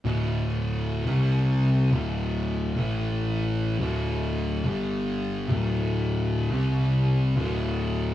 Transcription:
<<
  \new Staff \with { instrumentName = "Distorted electric guitar" } { \clef bass \time 4/4 \key c \mixolydian \tempo 4 = 88 <d, a, d>4. <c g c'>4~ <c g c'>16 <d, a, d>4~ <d, a, d>16 | <a, e a>4. <d, a, d>4~ <d, a, d>16 <g, d g>4~ <g, d g>16 | <d, a, d>4. <c g c'>4~ <c g c'>16 <d, a, d>4~ <d, a, d>16 | }
  \new Staff \with { instrumentName = "Distorted electric guitar" } { \clef bass \time 4/4 \key c \mixolydian <d, a, d>4. <c g c'>4~ <c g c'>16 <d, a, d>4~ <d, a, d>16 | <a, e a>4. <d, a, d>4~ <d, a, d>16 <g, d g>4~ <g, d g>16 | <d, a, d>4. <c g c'>4~ <c g c'>16 <d, a, d>4~ <d, a, d>16 | }
  \new Staff \with { instrumentName = "Picked electric bass" } { \clef bass \time 4/4 \key c \mixolydian d,,4. c,4~ c,16 d,,4~ d,,16 | a,,4. d,,4~ d,,16 g,,4~ g,,16 | d,,4. c,4~ c,16 d,,4~ d,,16 | }
>>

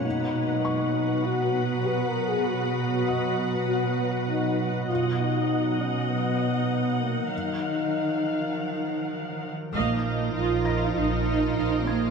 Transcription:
<<
  \new Staff \with { instrumentName = "Felt piano" } { \time 4/4 \key ces \lydian \tempo 4 = 99 r4 des'''2. | r4 <dis'' dis'''>2. | r1 | r1 |
r4. <bes'' bes'''>2 aes'''8 | }
  \new Staff \with { instrumentName = "Viola section" } { \time 4/4 \key ces \lydian << { fis''1~ | fis''1 | fis''1~ | fis''2.~ fis''8 r8 |
f''8 f''8 f''8 f''8 f''8 f''8 f''8 f''8 | } \\ { b'1~ | b'1 | dis''1 | f''2.~ f''8 r8 |
ees''8 ees''8 ees''8 ees''8 ees''8 ees''8 ees''8 ees''8 | } >> }
  \new Staff \with { instrumentName = "French horn section" } { \time 4/4 \key ces \lydian dis'2 fis'4 \tuplet 3/2 { b'8 bes'8 aes'8 } | fis'2 fis'4 dis'8 r8 | f'8 dis'4 des'8 b4. bes8 | ees'2. r4 |
r1 | }
  \new Staff \with { instrumentName = "Synth drone" } { \time 4/4 \key ces \lydian << { <fis' b'>1~ | <fis' b'>1 | dis''1 | <f bes'>1 |
<f' bes'>1 | } \\ { <fis b>1~ | <fis b>1 | <fis dis'>1~ | <fis dis'>1 |
<f ees'>1 | } >> }
  \new Staff \with { instrumentName = "Cello section" } { \time 4/4 \key ces \lydian b,1~ | b,1 | b,1 | ees2.~ ees8 r8 |
bes4 f'4 ees'4. bes8 | }
  \new Staff \with { instrumentName = "Double bass section" } { \clef bass \time 4/4 \key ces \lydian r1 | r1 | r1 | r1 |
bes,,4 bes,,4 bes,,4 bes,,4 | }
>>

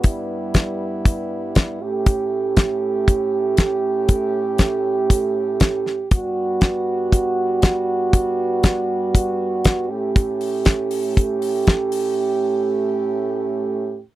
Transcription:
<<
  \new Staff \with { instrumentName = "French horn section" } { \time 4/4 \key a \mixolydian \tempo 4 = 119 <g, g b e'>2.~ <g, g b e'>8 <a, a cis' g'>8~ | <a, a cis' g'>1~ | <a, a cis' g'>1 | <g, g b fis'>1~ |
<g, g b fis'>2.~ <g, g b fis'>8 <a, a cis' g'>8~ | <a, a cis' g'>1~ | <a, a cis' g'>1 | }
  \new DrumStaff \with { instrumentName = "Drums" } \drummode { \time 4/4 <hh bd>4 <hh bd sn>4 <hh bd>4 <hh bd sn>4 | <hh bd>4 <hh bd sn>4 <hh bd>4 <hh bd sn>4 | <hh bd>4 <hh bd sn>4 <hh bd>4 <hh bd sn>8 sn8 | <hh bd>4 <hh bd sn>4 <hh bd>4 <hh bd sn>4 |
<hh bd>4 <hh bd sn>4 <hh bd>4 <hh bd sn>4 | <hh bd>8 hho8 <hh bd sn>8 hho8 <hh bd>8 hho8 <hh bd sn>8 hho8 | r4 r4 r4 r4 | }
>>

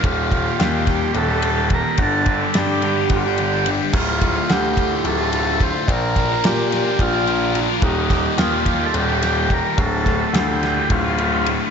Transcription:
<<
  \new Staff \with { instrumentName = "Transistor combo organ" } { \time 7/8 \key d \phrygian \tempo 4 = 108 f'4 g'4 a'4 bes'8 | a'4 g'4 g'32 f'32 g'8.~ g'32 r16. | f'4 g'4 a'4 c''8 | bes'4 g'4 f'4~ f'32 r16. |
ees'4 f'8.~ f'32 a'32 g'4 bes'8 | a'4 g'32 a'32 g'8. f'4~ f'32 r16. | }
  \new Staff \with { instrumentName = "Overdriven electric guitar" } { \clef bass \time 7/8 \key d \phrygian <ees, bes, ees g g'>8 <bes, ees g g'>16 <ees g g'>16 <ees, bes, ees g g'>8 <bes, ees g g'>16 <ees g g'>8 <ees g g'>16 <bes, ees g g'>8 <ees, bes, ees g g'>16 <ees g g'>16 | <g, d g d' g'>8 <d g d' g'>16 <g d' g'>16 <g, d g d' g'>8 <d g d' g'>16 <g d' g'>8 <g d' g'>16 <d g d' g'>8 <g, d g d' g'>16 <g d' g'>16 | <d, a, d a f'>8 <a, d a f'>16 <d a f'>16 <d, a, d a f'>8 <a, d a f'>16 <d a f'>8 <d a f'>16 <a, d a f'>8 <d, a, d a f'>16 <d a f'>16 | <bes, f bes d' f' bes'>8 <bes d' f' bes'>16 <bes d' f' bes'>16 <bes, f bes d' f' bes'>8 <bes d' f' bes'>16 <bes d' f' bes'>8 <bes d' f' bes'>16 <bes d' f' bes'>8 <bes, f bes d' f' bes'>16 <bes d' f' bes'>16 |
<ees, bes, ees g g'>8 <bes, ees g g'>16 <ees g g'>16 <ees, bes, ees g g'>8 <bes, ees g g'>16 <ees g g'>8 <ees g g'>16 <bes, ees g g'>8 <ees, bes, ees g g'>16 <ees g g'>16 | <d, a, d a f'>8 <a, d a f'>16 <d a f'>16 <d, a, d a f'>8 <a, d a f'>16 <d a f'>8 <d a f'>16 <a, d a f'>8 <d, a, d a f'>16 <d a f'>16 | }
  \new Staff \with { instrumentName = "Grand piano" } { \clef bass \time 7/8 \key d \phrygian ees,,4 ees,4 ees,,4. | g,,4 g,4 g,,4. | d,,4 d,4 d,,4. | bes,,4 bes,4 bes,,4. |
ees,,4 ees,4 ees,,4. | d,,4 d,4 d,,4. | }
  \new DrumStaff \with { instrumentName = "Drums" } \drummode { \time 7/8 <bd cymr>8 <bd cymr>8 <cymr sn>8 <bd cymr sn>8 cymr8 cymr8 <bd cymr>8 | <bd cymr>8 <bd cymr>8 <cymr sn>8 cymr8 <bd cymr>8 cymr8 cymr8 | <cymc bd>8 <bd cymr>8 <cymr sn>8 <bd cymr>8 cymr8 cymr8 <bd cymr>8 | <bd cymr>8 <bd cymr sn>8 <cymr sn>8 <cymr sn>8 <bd cymr>8 cymr8 cymr8 |
<bd cymr>8 <bd cymr sn>8 <cymr sn>8 <bd cymr sn>8 cymr8 <cymr sn>8 <bd cymr>8 | <bd cymr>8 <bd cymr sn>8 <cymr sn>8 <cymr sn>8 <bd cymr>8 cymr8 cymr8 | }
>>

